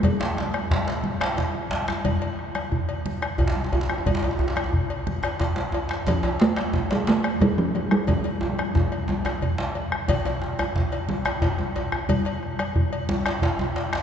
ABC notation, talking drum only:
X:1
M:12/8
L:1/8
Q:3/8=120
K:F
V:1 name="Talking drum" clef=bass
G,4 z8 | z12 | z12 | F,2 A,3 G, A,2 G, F, F, G, |
F,8- F,2 z2 | z12 | z12 |]